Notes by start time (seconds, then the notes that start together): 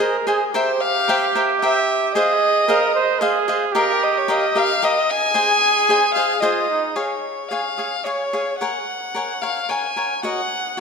0.00 G#4 A#4 C5 D#5 G#5
0.27 G#4 C5 D#5 G#5
0.52 G4 A#4 C5 E5 G5
0.81 F5
1.08 A#4 C5 E5 G5
1.35 A#4 C5 E5 G5
1.61 A#4 C5 E5 G5
2.15 G#4 C5 D#5 F5
2.68 G#4 A#4 C5 D#5 F5
2.95 C5
3.20 G#4 C5 D#5 F5
3.48 G#4 C5 D#5 F5
3.72 G4 A#4 D#5 F5
4.03 D#5
4.18 C#5
4.28 G4 A#4 D#5 F5
4.55 G4 A#4 D#5 F5
4.82 G4 A#4 D#5 F5
5.10 G#5
5.32 G#4 C5 D#5 G#5
5.89 G#4 C5 D#5 G#5
6.14 G#4 C5 D#5 F5 G#5
6.40 F4 G#4 C5 D#5 G#5
6.70 D#4
6.96 G#4 C#5 F5 G#5
7.49 G#4 C#5 F5 G#5
7.78 G#4 C#5 F5 G#5
8.04 G#4 C#5 F5 G#5
8.33 G#4 C#5 F5 G#5
8.60 A#4 C#5 F#5 G#5
9.15 A#4 C#5 F#5 G#5
9.42 A#4 C#5 F5 F#5 G#5
9.69 A#4 C#5 F#5 G#5
9.96 A#4 C#5 F#5 G#5
10.23 F#4 A#4 C#5 D#5 F#5